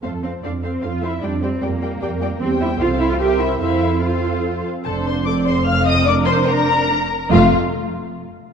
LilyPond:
<<
  \new Staff \with { instrumentName = "Violin section" } { \time 3/4 \key f \major \tempo 4 = 148 a'8 c''8 d''8 c''8 f''8 e''8 | d''8 c''8 bes'2 | c''8 e''8 f''8 e''16 f''16 g''8 e''8 | e''4 f''4. r8 |
a''8 c'''8 d'''8 c'''8 f'''8 ees'''8 | d'''8 c'''8 bes''2 | f''8 r2 r8 | }
  \new Staff \with { instrumentName = "Violin section" } { \time 3/4 \key f \major <c'' f''>8 <c'' f''>8 <c'' f''>8 <c'' f''>8 <c'' f''>8 <c'' f''>8 | <d'' g''>8 <d'' g''>8 <d'' g''>8 <d'' g''>8 <d'' g''>8 <d'' g''>8 | <c'' g''>4 <c'' f''>4 <c'' e''>4 | <c'' f''>4 <c'' f''>4. r8 |
a'8 c''8 d''8 c''8 f''8 ees''8 | d''8 c''8 bes'2 | f'8 r2 r8 | }
  \new Staff \with { instrumentName = "Cello section" } { \time 3/4 \key f \major a8 c'8 d'8 c'8 f'8 e'8 | d'8 c'8 bes2 | c'8 e'8 f'8 e'16 f'16 g'8 e'8 | e'4 f'4. r8 |
f,2.~ | f,2~ f,8 r8 | f,8 r2 r8 | }
  \new Staff \with { instrumentName = "Viola section" } { \time 3/4 \key f \major << { a'8 a'8 a'8 a'8 a'8 a'8 | g'8 g'8 g'8 g'8 g'8 g'8 | g'4 a'4 bes'4 | a'4 a'4. r8 |
c''4 a'2 | bes'2 bes'8 r8 | f'8 r2 r8 | } \\ { c'8 c'8 c'8 c'8 c'8 c'8 | g8 g8 g8 g8 g8 g8 | g4 c'4 c'4 | c'4 c'4. r8 |
d'4 c'4 c'4 | d'4 d'4 d'8 r8 | a8 r2 r8 | } >> }
  \new Staff \with { instrumentName = "Double bass section" } { \clef bass \time 3/4 \key f \major f,4 f,4 f,4 | f,4 f,4 f,4 | e,4 c,2 | f,2~ f,8 r8 |
f,,2.~ | f,,2~ f,,8 r8 | f,,8 r2 r8 | }
>>